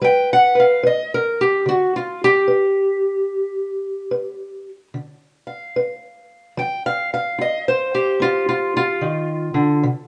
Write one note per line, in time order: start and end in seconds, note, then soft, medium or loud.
0.01 0.78 G3 medium
0.01 0.55 B4 medium
0.01 0.31 G5 loud
0.33 0.58 F#5 loud
0.55 0.83 B4 soft
0.60 0.86 F5 medium
0.83 1.11 B4 medium
0.83 1.13 D#5 medium
1.14 1.40 A#4 medium
1.41 1.67 G4 medium
1.66 2.42 D3 medium
1.66 1.95 F#4 medium
1.96 2.22 F4 medium
2.24 4.68 G4 loud
2.48 3.24 B4 medium
4.11 4.87 B4 medium
4.94 5.70 D3 medium
5.47 6.54 F5 soft
5.76 6.52 B4 medium
6.57 7.33 F3 medium
6.57 6.85 G5 medium
6.86 7.13 F5 medium
7.14 8.22 F5 medium
7.38 8.15 F4 medium
7.38 7.67 D#5 medium
7.68 8.76 C5 medium
7.95 9.03 G4 medium
8.20 8.96 C4 medium
8.20 8.47 F4 loud
8.49 8.75 F4 medium
8.77 9.85 F4 loud
9.01 9.54 D#3 medium
9.54 9.84 D3 medium
9.83 10.07 C3 medium